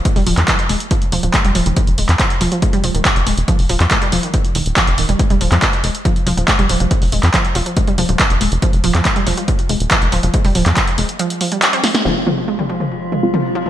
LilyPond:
<<
  \new Staff \with { instrumentName = "Synth stab" } { \time 4/4 \key f \minor \tempo 4 = 140 r1 | r1 | r1 | r1 |
r1 | r1 | r1 | <aes c' f'>16 r16 <aes c' f'>16 r2 <aes c' f'>16 r4 | }
  \new Staff \with { instrumentName = "Synth drone" } { \time 4/4 \key f \minor r1 | r1 | r1 | r1 |
r1 | r1 | r1 | <f f'>1 | }
  \new Staff \with { instrumentName = "Synth arpeggio sound" } { \clef bass \time 4/4 \key f \minor aes16 g16 f16 ees16 r8 aes16 r16 f16 r16 f16 f16 aes16 g16 f16 ees16 | r8 aes16 r16 f16 r16 f16 f16 aes16 g16 f16 ees16 r8 aes16 r16 | f16 r16 f16 f16 aes16 g16 f16 ees16 r8 ees16 r16 f16 r16 ees16 g16 | aes16 g16 f16 f16 r8 aes16 r16 f16 r16 f16 f16 aes16 g16 f16 f16 |
r8 aes16 r16 f16 r16 f16 f16 aes16 g16 f16 f16 r8 aes16 r16 | f16 r16 f16 f16 aes16 g16 f16 f16 r8 aes16 r16 f16 r16 f16 f16 | aes16 g16 f16 f16 r8 aes16 r16 f16 r16 f16 g16 des'16 c'16 f16 aes16 | f16 r16 f16 f16 aes16 g16 f16 f16 r8 aes16 r16 f16 r16 f16 f16 | }
  \new Staff \with { instrumentName = "Analog synth bass" } { \clef bass \time 4/4 \key f \minor r16 f,,16 ees,,16 f,16 r8 f,,16 r8. f,,16 ees,,16 r16 f,,16 ees,,16 f,,16 | r16 f,,16 ees,,16 f,16 r8 f,,16 r8. f,,16 ees,,16 r16 f,,16 ees,,16 f,,16 | r16 f,,16 ees,,16 f,16 r8 f,,16 r8. f,,16 ees,,16 r16 f,,16 ees,,16 f,,16 | r16 f,,16 ees,,16 f,16 r8 f,,16 r8. f,,16 ees,,16 r16 f,,16 ees,,16 f,,16 |
r16 f,,16 ees,,16 f,16 r8 f,,16 r8. f,,16 ees,,16 r16 f,,16 ees,,16 f,,16 | r16 f,,16 ees,,16 f,16 r8 f,,16 r8. f,,16 ees,,16 r16 f,,16 ees,,16 f,,16 | r16 f,,16 ees,,16 f,16 r8 f,,16 r2 r16 | f,,1 | }
  \new DrumStaff \with { instrumentName = "Drums" } \drummode { \time 4/4 <hh bd>16 hho16 hho16 <hc hh>16 <hc hh bd>16 hh16 hho16 hh16 <hh bd>16 hh16 hho16 hh16 <hc hh bd>16 hh16 hho16 hh16 | <hh bd>16 hh16 hho16 <hc hh>16 <hc hh bd>16 hh16 hho16 hh16 <hh bd>16 hh16 hho16 hh16 <hc hh bd>16 hh16 hho16 hh16 | <hh bd>16 hho16 hho16 <hc hh>16 <hc hh bd>16 hh16 hho16 hh16 <hh bd>16 hh16 hho16 hh16 <hc hh bd>16 hh16 hho16 hh16 | <hh bd>16 hh16 hho16 <hc hh>16 <hc hh bd>16 hh16 hho16 hh16 <hh bd>16 hh16 hho16 hh16 <hc hh bd>16 hh16 hho16 hh16 |
<hh bd>16 hho16 hho16 <hc hh>16 <hc hh bd>16 hh16 hho16 hh16 <hh bd>16 hh16 hho16 hh16 <hc hh bd>16 hh16 hho16 hh16 | <hh bd>16 hh16 hho16 <hc hh>16 <hc hh bd>16 hh16 hho16 hh16 <hh bd>16 hh16 hho16 hh16 <hc hh bd>16 hh16 hho16 hh16 | <hh bd>16 hho16 hho16 <hc hh>16 <hc hh bd>16 hh16 hho16 hh16 hh16 hh16 hho16 hh16 <hc hh>16 hh16 <hho sn>16 <hh sn>16 | toml8 toml8 r16 toml16 hh16 <hh toml>16 hh8 <hh toml>16 hh16 <hh toml>8 hh16 toml16 | }
>>